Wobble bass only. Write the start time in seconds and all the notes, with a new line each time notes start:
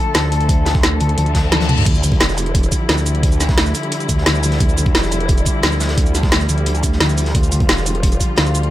0.15 D2
1.00 D2
1.18 D2
1.86 D2
2.20 E1
2.89 D2
4.09 D2
4.60 D2
4.95 E1
5.63 D2
6.49 D2
7.00 D2
7.35 D2
7.69 E1
8.38 D2